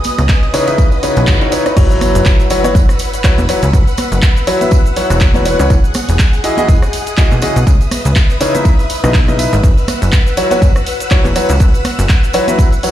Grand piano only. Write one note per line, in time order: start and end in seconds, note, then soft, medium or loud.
0.54 0.66 C#3 medium
0.54 0.66 D#4 medium
0.54 0.66 E4 medium
0.54 0.66 B4 medium
0.54 0.66 C#5 loud
0.68 0.86 C#3 medium
0.68 0.86 D#4 medium
0.68 0.86 E4 medium
0.68 0.86 B4 medium
0.68 0.86 E5 medium
1.03 1.38 C#3 medium
1.03 1.38 D#4 medium
1.03 1.38 E4 medium
1.03 1.38 B4 medium
1.03 1.38 C#5 medium
1.41 1.50 C#3 medium
1.41 1.50 D#4 medium
1.41 1.50 E4 medium
1.41 1.50 B4 medium
1.41 1.50 C#5 medium
1.52 1.63 D#4 medium
1.52 1.63 E4 medium
1.52 1.63 B4 medium
1.52 1.63 C#5 loud
1.66 1.75 D#4 medium
1.66 1.75 E4 medium
1.66 1.75 B4 medium
1.66 1.75 C#5 medium
1.77 2.46 F#3 loud
1.77 2.46 E4 medium
1.77 2.46 F#4 medium
1.77 2.46 B4 medium
1.77 2.46 C#5 loud
2.50 2.62 F#3 medium
2.50 2.62 E4 medium
2.50 2.62 F#4 medium
2.50 2.62 B4 medium
2.50 2.62 C#5 loud
2.64 2.75 F#3 medium
2.64 2.75 E4 medium
2.64 2.75 F#4 medium
2.64 2.75 B4 medium
2.64 2.75 C#5 loud
3.24 3.38 F#3 loud
3.24 3.38 E4 medium
3.24 3.38 F#4 medium
3.24 3.38 B4 medium
3.24 3.38 C#5 loud
3.49 3.62 F#3 medium
3.49 3.62 E4 medium
3.49 3.62 F#4 medium
3.49 3.62 B4 medium
3.49 3.62 C#5 medium
4.47 4.59 F#3 loud
4.47 4.59 E4 medium
4.47 4.59 F#4 medium
4.47 4.59 B4 medium
4.47 4.59 C#5 loud
4.61 4.79 F#3 medium
4.61 4.79 E4 medium
4.61 4.79 F#4 medium
4.61 4.79 B4 medium
4.61 4.79 E5 medium
4.96 5.32 F#3 medium
4.96 5.32 E4 medium
4.96 5.32 F#4 medium
4.96 5.32 B4 medium
4.96 5.32 C#5 medium
5.35 5.44 F#3 medium
5.35 5.44 E4 medium
5.35 5.44 F#4 medium
5.35 5.44 B4 medium
5.35 5.44 C#5 medium
5.46 5.56 E3 medium
5.46 5.56 E4 medium
5.46 5.56 F#4 medium
5.46 5.56 B4 medium
5.46 5.56 C#5 loud
5.59 5.69 E3 medium
5.59 5.69 E4 medium
5.59 5.69 F#4 medium
5.59 5.69 B4 medium
5.59 5.69 C#5 medium
6.44 6.56 E3 medium
6.44 6.56 E4 medium
6.44 6.56 F#4 medium
6.44 6.56 G#4 medium
6.44 6.56 D#5 loud
6.58 6.68 E3 loud
6.58 6.68 E4 medium
6.58 6.68 F#4 medium
6.58 6.68 G#4 medium
6.58 6.68 D#5 loud
7.18 7.31 E3 loud
7.18 7.31 E4 medium
7.18 7.31 F#4 medium
7.18 7.31 G#4 medium
7.18 7.31 D#5 loud
7.42 7.56 C#3 medium
7.42 7.56 E4 medium
7.42 7.56 F#4 medium
7.42 7.56 G#4 medium
7.42 7.56 D#5 medium
8.41 8.52 C#3 loud
8.41 8.52 D#4 medium
8.41 8.52 E4 medium
8.41 8.52 B4 medium
8.41 8.52 C#5 loud
8.55 8.73 C#3 medium
8.55 8.73 D#4 medium
8.55 8.73 E4 medium
8.55 8.73 B4 medium
8.55 8.73 E5 medium
9.04 9.14 C#3 medium
9.04 9.14 D#4 medium
9.04 9.14 E4 medium
9.04 9.14 B4 medium
9.04 9.14 D#5 loud
9.28 9.36 C#3 medium
9.28 9.36 D#4 medium
9.28 9.36 E4 medium
9.28 9.36 B4 medium
9.28 9.36 D#5 loud
9.39 9.52 D#4 medium
9.39 9.52 E4 medium
9.39 9.52 B4 medium
9.39 9.52 E5 medium
10.37 10.49 F#3 medium
10.37 10.49 E4 medium
10.37 10.49 F#4 medium
10.37 10.49 B4 medium
10.37 10.49 C#5 loud
10.51 10.62 F#3 loud
10.51 10.62 E4 medium
10.51 10.62 F#4 medium
10.51 10.62 B4 medium
10.51 10.62 C#5 loud
11.11 11.24 F#3 loud
11.11 11.25 E4 medium
11.11 11.25 F#4 medium
11.11 11.24 B4 medium
11.11 11.24 C#5 loud
11.36 11.49 F#3 medium
11.36 11.49 E4 medium
11.36 11.49 F#4 medium
11.36 11.49 B4 medium
11.36 11.49 C#5 medium
12.34 12.46 F#3 loud
12.34 12.46 E4 medium
12.34 12.46 F#4 medium
12.34 12.46 B4 medium
12.34 12.46 C#5 loud
12.48 12.66 F#3 medium
12.48 12.66 E4 medium
12.48 12.66 F#4 medium
12.48 12.66 B4 medium
12.48 12.66 E5 medium
12.83 12.91 F#3 medium
12.83 12.91 E4 medium
12.83 12.91 F#4 medium
12.83 12.91 B4 medium
12.83 12.91 C#5 medium